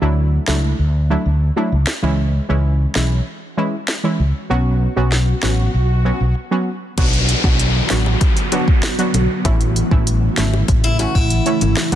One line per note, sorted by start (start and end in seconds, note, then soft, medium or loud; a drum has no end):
0.01 0.37 D2 medium
0.01 0.44 F#3 medium
0.01 0.44 A3 medium
0.01 0.44 D4 medium
0.01 0.45 E4 medium
0.48 0.72 C#2 medium
0.48 0.76 F#3 medium
0.48 0.77 A3 medium
0.48 0.77 D4 medium
0.48 0.77 E4 medium
0.48 snare loud
0.79 1.15 D2 loud
1.10 1.28 F#3 medium
1.10 1.28 A3 medium
1.10 1.28 D4 medium
1.10 1.29 E4 medium
1.26 1.49 D2 medium
1.56 1.75 F#3 medium
1.56 1.75 A3 medium
1.56 1.75 D4 medium
1.56 1.75 E4 medium
1.72 1.84 C#2 medium
1.87 snare loud
2.02 2.39 C#2 loud
2.02 2.45 E3 medium
2.02 2.45 G#3 medium
2.02 2.45 C#4 medium
2.02 2.46 E4 loud
2.02 swell medium
2.49 2.85 C#2 medium
2.49 2.92 E3 medium
2.49 2.92 G#3 medium
2.49 2.92 C#4 medium
2.49 2.92 E4 medium
2.95 3.19 B1 medium
2.95 3.24 E3 medium
2.95 3.24 G#3 medium
2.95 3.24 C#4 medium
2.95 3.24 E4 medium
2.95 snare medium
3.57 3.75 E3 medium
3.57 3.76 G#3 medium
3.57 3.76 C#4 medium
3.57 3.76 E4 medium
3.88 snare loud
4.04 4.22 E3 medium
4.04 4.22 G#3 medium
4.04 4.22 C#4 medium
4.04 4.22 E4 medium
4.20 4.31 C#2 medium
4.50 4.86 B1 loud
4.50 4.93 F#3 medium
4.50 4.93 B3 medium
4.50 4.93 C#4 medium
4.50 4.93 F#4 loud
4.96 5.32 B1 medium
4.96 5.39 F#3 medium
4.96 5.39 B3 medium
4.96 5.39 C#4 medium
4.96 5.39 F#4 medium
5.12 snare medium
5.43 5.67 A1 medium
5.43 5.71 F#3 medium
5.43 5.71 B3 medium
5.43 5.71 C#4 medium
5.43 5.71 F#4 medium
5.43 snare loud
5.74 6.10 B1 loud
6.05 6.23 F#3 medium
6.05 6.23 B3 medium
6.05 6.23 C#4 medium
6.05 6.23 F#4 medium
6.20 6.32 B1 medium
6.51 6.69 F#3 medium
6.51 6.69 B3 medium
6.51 6.70 C#4 medium
6.51 6.70 F#4 medium
6.98 7.33 B1 loud
6.98 9.43 D3 medium
6.98 7.40 F#3 medium
6.98 9.43 F#3 medium
6.98 9.43 B3 medium
6.98 7.40 B3 medium
6.98 7.40 D4 medium
6.98 9.43 F#4 medium
6.98 7.41 F#4 loud
6.98 kick loud
6.98 closed hi-hat medium
6.98 crash medium
6.98 high bongo medium
6.98 downlifter medium
7.13 closed hi-hat medium
7.29 closed hi-hat medium
7.44 7.80 B1 medium
7.44 7.87 F#3 medium
7.44 7.87 B3 medium
7.44 7.87 D4 medium
7.44 7.87 F#4 medium
7.44 kick medium
7.59 closed hi-hat medium
7.90 8.14 A1 medium
7.90 8.19 F#3 medium
7.90 8.19 B3 medium
7.90 8.19 D4 medium
7.90 8.19 F#4 medium
7.90 snare loud
7.90 closed hi-hat medium
8.06 high bongo medium
8.21 kick loud
8.21 closed hi-hat medium
8.21 high bongo medium
8.37 closed hi-hat medium
8.52 8.70 F#3 medium
8.52 8.70 B3 medium
8.52 8.71 D4 medium
8.52 8.71 F#4 medium
8.52 closed hi-hat medium
8.52 high bongo medium
8.68 kick medium
8.83 snare loud
8.83 closed hi-hat medium
8.98 9.17 F#3 medium
8.98 9.17 B3 medium
8.98 9.17 D4 medium
8.98 9.17 F#4 medium
8.98 closed hi-hat medium
9.14 9.26 B1 medium
9.14 closed hi-hat medium
9.14 low bongo medium
9.45 9.81 A1 loud
9.45 11.90 C#3 medium
9.45 9.88 E3 medium
9.45 11.90 E3 medium
9.45 9.88 A3 medium
9.45 11.90 A3 medium
9.45 9.88 C#4 medium
9.45 11.90 E4 medium
9.45 9.88 E4 loud
9.45 kick loud
9.45 closed hi-hat medium
9.45 high bongo medium
9.61 closed hi-hat medium
9.76 closed hi-hat medium
9.91 10.27 A1 medium
9.91 10.34 E3 medium
9.91 10.34 A3 medium
9.91 10.34 C#4 medium
9.91 10.34 E4 medium
9.91 kick medium
10.07 closed hi-hat medium
10.37 10.61 G#1 medium
10.37 10.66 E3 medium
10.37 10.66 A3 medium
10.37 10.66 C#4 medium
10.37 10.66 E4 medium
10.37 snare loud
10.37 closed hi-hat medium
10.53 high bongo medium
10.68 11.04 A1 loud
10.68 kick loud
10.68 closed hi-hat medium
10.68 high bongo medium
10.84 10.99 E4 medium
10.84 closed hi-hat medium
10.99 11.18 E3 medium
10.99 11.18 A3 medium
10.99 11.18 C#4 medium
10.99 11.18 E4 medium
10.99 11.15 F#4 medium
10.99 closed hi-hat medium
10.99 high bongo medium
11.15 11.39 A1 medium
11.15 11.89 E4 medium
11.15 kick medium
11.30 closed hi-hat medium
11.46 11.64 E3 medium
11.46 11.64 A3 medium
11.46 11.64 C#4 medium
11.46 11.64 E4 medium
11.46 closed hi-hat medium
11.61 11.73 G#1 loud
11.61 closed hi-hat medium
11.61 low bongo medium
11.77 snare loud
11.92 11.95 F#3 medium